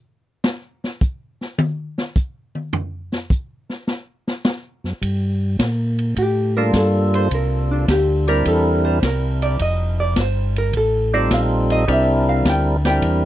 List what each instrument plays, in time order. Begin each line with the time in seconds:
0.44 snare
0.84 snare
1.01 kick, hi-hat pedal
1.41 snare
1.58 high tom
1.98 snare
2.16 kick, hi-hat pedal
2.55 high tom
2.73 floor tom
3.12 snare
3.30 kick, hi-hat pedal
3.70 snare
3.87 snare
4.27 snare
4.45 snare, hi-hat pedal
4.84 tonewheel organ F#2, snare
5.02 tonewheel organ G2, kick, ride
5.59 tonewheel organ A#2, kick, snare, hi-hat pedal, ride
5.99 ride
6.16 tonewheel organ A2, hollow-body jazz guitar G4, kick, ride
6.57 tonewheel organ G3 A#3 D4 F4 A4, hollow-body jazz guitar A#4
6.73 tonewheel organ G2, hollow-body jazz guitar A4, kick, snare, hi-hat pedal, ride
7.14 hollow-body jazz guitar C5, ride
7.31 tonewheel organ C2, hollow-body jazz guitar A#4, kick, ride
7.71 hollow-body jazz guitar D4
7.88 tonewheel organ D2, hollow-body jazz guitar G4, kick, snare, hi-hat pedal, ride
8.28 tonewheel organ G3 C4 D4 E4 A#4, hollow-body jazz guitar A#4, ride
8.45 tonewheel organ E2, hollow-body jazz guitar A4, kick, ride
8.85 hollow-body jazz guitar C5
9.02 tonewheel organ C2, hollow-body jazz guitar A#4, kick, snare, hi-hat pedal, ride
9.42 hollow-body jazz guitar D5, ride
9.59 tonewheel organ F1, hollow-body jazz guitar D#5, kick, ride
10.00 hollow-body jazz guitar D5
10.16 tonewheel organ G1, kick, snare, hi-hat pedal, ride
10.20 hollow-body jazz guitar C5
10.56 hollow-body jazz guitar A#4, ride
10.73 tonewheel organ A1, hollow-body jazz guitar A4, kick, ride
11.13 tonewheel organ G3 C4 D#4 F4 A4, hollow-body jazz guitar D5
11.31 tonewheel organ A#1, hollow-body jazz guitar F5, kick, snare, hi-hat pedal, ride
11.70 hollow-body jazz guitar D#5, ride
11.88 tonewheel organ C2 G3 C4 D4 E4 A#4, kick, ride
11.92 hollow-body jazz guitar E5
12.29 hollow-body jazz guitar F5
12.45 tonewheel organ D2, kick, snare, hi-hat pedal, ride
12.50 hollow-body jazz guitar G5
12.85 tonewheel organ G3 C4 D4 E4 A#4, hollow-body jazz guitar G5, snare, ride
13.02 tonewheel organ E2, kick, ride